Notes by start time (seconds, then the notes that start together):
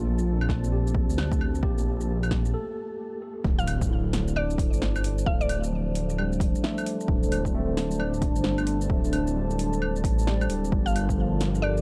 Already playing: A#1 F3 A3 C4 F4 C5 D5 A5
0.19 shaker
0.41 claves
0.49 kick, snare
0.64 shaker
0.72 G4
0.87 shaker
0.95 kick
1.09 D2, shaker
1.18 snare, claves
1.32 kick, shaker
1.41 claves
1.55 shaker
1.62 A#1 A#3 G4, kick
1.78 shaker
2.01 shaker
2.23 claves, shaker
2.31 kick, snare
2.45 shaker
2.54 A4
3.44 D1 D4 A4 C5 D5 A5, kick, impact
3.59 F5, shaker
3.67 open hi-hat, claves
3.81 kick, shaker
3.91 E4
4.13 snare, open hi-hat
4.28 shaker
4.36 D5, claves
4.50 shaker
4.58 kick, open hi-hat
4.72 G1, shaker
4.82 snare
4.96 claves, shaker
5.04 open hi-hat
5.18 shaker
5.26 D1 A3 F5, kick
5.41 D5, shaker
5.49 open hi-hat, claves
5.64 shaker
5.72 F3
5.95 open hi-hat
6.10 shaker
6.18 G3, claves
6.32 shaker
6.40 kick, open hi-hat
6.55 shaker
6.64 A3, snare
6.78 claves, shaker
6.86 open hi-hat
7.01 shaker
7.08 D1, kick
7.23 shaker
7.32 open hi-hat, claves
7.45 kick, shaker
7.54 A3 C4
7.77 snare, open hi-hat
7.91 shaker
7.99 D4, claves
8.14 shaker
8.22 kick, open hi-hat
8.36 G1, shaker
8.44 snare
8.58 claves, shaker
8.67 open hi-hat
8.81 shaker
8.90 D1 A3, kick
9.05 shaker
9.13 open hi-hat, claves
9.27 shaker
9.36 G3
9.51 shaker
9.59 open hi-hat
9.73 shaker
9.82 claves
9.96 shaker
10.04 A1, kick, open hi-hat
10.19 shaker
10.27 G3, snare
10.41 claves, shaker
10.49 D1, open hi-hat
10.65 shaker
10.72 G1 F3 G3 F4 G4 A4 A#4, kick
10.86 F5, shaker
10.96 open hi-hat, claves
11.09 kick, shaker
11.18 F3
11.41 snare, open hi-hat
11.55 shaker
11.62 D5, claves
11.77 shaker